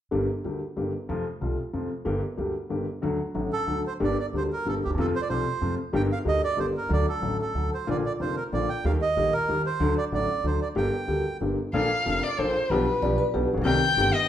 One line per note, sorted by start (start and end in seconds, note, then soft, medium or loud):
0.11 0.25 G1 medium
0.11 0.25 G2 medium
0.11 0.25 D3 soft
0.11 0.25 G3 soft
0.11 0.25 A#3 soft
0.11 0.25 G4 soft
0.44 0.58 D2 soft
0.44 0.58 D3 soft
0.44 0.58 G3 soft
0.44 0.58 A#3 soft
0.44 0.58 G4 soft
0.77 0.90 G1 soft
0.77 0.90 G2 soft
0.77 0.90 D3 soft
0.77 0.90 G3 soft
0.77 0.91 A#3 soft
0.77 0.91 G4 soft
1.09 1.23 F2 soft
1.09 1.23 F2 medium
1.09 1.23 C3 soft
1.09 1.23 F3 medium
1.09 1.23 A3 soft
1.09 1.23 F4 soft
1.41 1.55 C2 soft
1.41 1.55 C3 soft
1.41 1.55 F3 soft
1.41 1.55 A3 soft
1.41 1.55 F4 soft
1.73 1.87 F2 soft
1.73 1.87 C3 soft
1.73 1.87 F3 soft
1.73 1.87 A3 soft
1.73 1.88 F4 soft
2.05 2.19 G1 medium
2.05 2.19 G2 medium
2.05 2.19 D3 soft
2.05 2.19 G3 soft
2.05 2.19 A#3 soft
2.05 2.19 G4 medium
2.37 2.51 D2 soft
2.37 2.52 D2 soft
2.37 2.51 D3 soft
2.37 2.51 G3 soft
2.37 2.52 A#3 soft
2.37 2.52 G4 soft
2.69 2.84 G1 soft
2.69 2.84 G2 soft
2.69 2.83 D3 soft
2.69 2.83 G3 soft
2.69 2.84 A#3 soft
2.69 2.84 G4 soft
3.02 3.16 D2 medium
3.02 3.16 D3 medium
3.02 3.16 F#3 soft
3.02 3.16 A3 soft
3.02 3.16 F#4 medium
3.34 3.48 A1 soft
3.34 3.48 A2 soft
3.34 3.48 D3 soft
3.34 3.48 F#3 soft
3.34 3.48 A3 soft
3.34 3.48 F#4 soft
3.53 3.83 A4 medium
3.67 3.81 D2 soft
3.67 3.81 D3 soft
3.67 3.81 F#3 soft
3.67 3.81 A3 soft
3.67 3.82 F#4 soft
3.87 3.94 C5 medium
4.00 4.14 G1 medium
4.00 4.14 G2 medium
4.00 4.14 D3 soft
4.00 4.14 G3 soft
4.00 4.14 A#3 soft
4.00 4.14 G4 medium
4.04 4.18 D5 medium
4.20 4.26 D5 medium
4.33 4.47 D2 soft
4.33 4.48 D3 soft
4.33 4.47 G3 soft
4.33 4.47 A#3 soft
4.33 4.48 G4 soft
4.33 4.43 C5 medium
4.53 4.68 A#4 medium
4.65 4.79 G1 soft
4.65 4.80 G1 soft
4.65 4.80 G2 soft
4.65 4.79 D3 soft
4.65 4.79 G3 soft
4.65 4.80 A#3 soft
4.65 4.80 G4 soft
4.65 4.75 A4 medium
4.84 4.90 D2 soft
4.84 4.91 G4 medium
4.90 4.94 D#2 soft
4.94 4.97 E2 soft
4.94 4.98 E2 soft
4.94 5.11 F2 medium
4.94 5.11 C3 medium
4.94 5.12 F3 medium
4.94 5.12 A3 soft
4.99 5.12 F4 medium
4.99 5.06 A4 medium
5.15 5.21 C5 medium
5.22 5.28 D5 medium
5.29 5.43 C2 soft
5.29 5.43 C3 soft
5.29 5.43 F3 soft
5.29 5.43 A3 soft
5.29 5.43 F4 soft
5.29 5.75 C5 medium
5.61 5.75 F2 soft
5.61 5.75 C3 soft
5.61 5.75 F3 soft
5.61 5.75 A3 soft
5.61 5.75 F4 soft
5.93 6.07 G1 medium
5.93 6.07 G2 medium
5.93 6.07 D3 soft
5.93 6.07 G3 soft
5.93 6.07 A#3 soft
5.93 6.07 G4 medium
5.93 6.02 G5 medium
6.12 6.19 F5 medium
6.25 6.39 D2 soft
6.25 6.39 D3 soft
6.25 6.39 G3 soft
6.25 6.39 A#3 soft
6.25 6.39 G4 soft
6.25 6.42 D#5 medium
6.44 6.59 D5 medium
6.57 6.71 G1 soft
6.57 6.71 G2 soft
6.57 6.71 D3 soft
6.57 6.71 G3 soft
6.57 6.71 A#3 soft
6.57 6.71 G4 soft
6.57 6.66 C5 medium
6.77 6.92 A#4 medium
6.89 7.03 D2 medium
6.89 7.03 D3 medium
6.89 7.03 F#3 soft
6.89 7.03 A3 soft
6.89 7.03 F#4 medium
6.89 7.06 D5 medium
7.09 7.37 A4 medium
7.22 7.35 A1 soft
7.22 7.36 A1 soft
7.22 7.36 A2 soft
7.22 7.36 D3 soft
7.22 7.35 F#3 soft
7.22 7.36 A3 soft
7.22 7.36 F#4 soft
7.42 7.70 A4 medium
7.55 7.68 D2 soft
7.55 7.69 D2 soft
7.55 7.69 D3 soft
7.55 7.69 F#3 soft
7.55 7.69 A3 soft
7.55 7.69 F#4 soft
7.74 7.89 C5 medium
7.87 8.01 A#1 medium
7.87 8.01 A#2 medium
7.87 8.01 D3 soft
7.87 8.01 F3 soft
7.87 8.01 A#3 soft
7.87 8.01 F4 medium
7.87 7.97 D5 medium
8.06 8.13 D5 medium
8.20 8.33 F1 soft
8.20 8.34 F1 soft
8.20 8.33 F2 soft
8.20 8.33 D3 soft
8.20 8.33 F3 soft
8.20 8.34 A#3 soft
8.20 8.34 F4 soft
8.20 8.36 C5 medium
8.37 8.44 A#4 medium
8.52 8.66 A#1 soft
8.52 8.66 A#2 soft
8.52 8.66 D3 soft
8.52 8.66 F3 soft
8.52 8.66 A#3 soft
8.52 8.66 F4 soft
8.52 8.69 D5 medium
8.69 8.85 G5 medium
8.85 8.98 D#2 medium
8.85 8.98 D#3 medium
8.85 8.98 G3 soft
8.85 8.98 A#3 medium
8.85 8.98 G4 medium
8.85 8.92 F5 medium
9.01 9.33 D#5 medium
9.16 9.30 A#1 medium
9.16 9.30 A#1 soft
9.16 9.30 A#2 soft
9.16 9.30 D#3 soft
9.16 9.30 G3 soft
9.16 9.30 A#3 soft
9.16 9.30 G4 soft
9.33 9.62 A#4 medium
9.48 9.62 D#2 soft
9.48 9.62 D#3 soft
9.48 9.62 G3 soft
9.48 9.62 A#3 soft
9.48 9.62 G4 soft
9.66 9.95 C5 medium
9.80 9.93 D2 medium
9.80 9.93 D3 medium
9.80 9.93 F#3 soft
9.80 9.93 A3 medium
9.80 9.94 F#4 medium
9.98 10.05 D5 medium
10.12 10.25 A1 medium
10.12 10.25 A1 soft
10.12 10.26 A2 soft
10.12 10.25 D3 soft
10.12 10.25 F#3 soft
10.12 10.25 A3 soft
10.12 10.25 F#4 soft
10.12 10.46 D5 medium
10.44 10.57 D2 soft
10.44 10.57 D3 soft
10.44 10.57 F#3 soft
10.44 10.57 A3 soft
10.44 10.57 F#4 soft
10.44 10.60 C5 medium
10.62 10.68 D5 medium
10.75 10.89 G1 medium
10.75 10.89 G2 medium
10.75 10.89 D3 soft
10.75 10.89 G3 soft
10.75 10.89 A#3 soft
10.75 10.89 G4 medium
10.75 11.37 G5 medium
11.08 11.21 D2 soft
11.08 11.22 D2 soft
11.08 11.22 D3 soft
11.08 11.22 G3 soft
11.08 11.22 A#3 soft
11.08 11.22 G4 soft
11.40 11.54 G1 soft
11.40 11.55 G1 soft
11.40 11.55 G2 soft
11.40 11.55 D3 soft
11.40 11.55 G3 soft
11.40 11.55 A#3 soft
11.40 11.55 G4 soft
11.73 11.87 A#1 medium
11.73 11.87 A#2 medium
11.73 11.87 F3 medium
11.73 11.87 A#3 medium
11.73 11.87 D4 soft
11.73 11.87 A4 medium
11.73 12.25 F5 medium
12.06 12.19 F1 soft
12.06 12.20 F1 medium
12.06 12.19 F2 soft
12.06 12.19 F3 soft
12.06 12.19 A#3 soft
12.06 12.20 D4 soft
12.06 12.20 A4 soft
12.23 12.41 D5 medium
12.38 12.52 A#1 soft
12.38 12.52 A#1 medium
12.38 12.52 A#2 soft
12.38 12.52 F3 soft
12.38 12.52 A#3 soft
12.38 12.52 D4 soft
12.38 12.52 A4 soft
12.38 12.72 C5 medium
12.70 12.83 B1 medium
12.70 12.84 B1 medium
12.70 12.84 B2 medium
12.70 12.84 F3 medium
12.70 12.84 B3 medium
12.70 12.84 D4 medium
12.70 12.84 G4 medium
12.70 13.18 B4 medium
13.02 13.15 B1 medium
13.02 13.16 B1 medium
13.02 13.16 B2 medium
13.02 13.15 F3 soft
13.02 13.16 B3 soft
13.02 13.16 D4 soft
13.02 13.16 G4 soft
13.02 13.19 D5 medium
13.18 13.34 B4 medium
13.34 13.47 B1 soft
13.34 13.47 B1 medium
13.34 13.47 B2 soft
13.34 13.47 F3 soft
13.34 13.47 B3 soft
13.34 13.47 D4 soft
13.34 13.56 G4 medium
13.34 13.47 G4 soft
13.54 13.57 A1 soft
13.54 13.61 A#1 medium
13.62 13.65 B1 medium
13.62 13.78 C2 medium
13.62 13.78 C3 medium
13.62 13.78 D#3 medium
13.62 13.78 A#3 medium
13.62 13.78 C4 medium
13.62 13.78 G4 medium
13.62 14.15 G5 loud
13.97 14.10 G1 medium
13.97 14.10 G2 medium
13.97 14.10 D#3 soft
13.97 14.10 A#3 soft
13.97 14.10 C4 soft
13.97 14.10 G4 medium
14.14 14.29 D#5 medium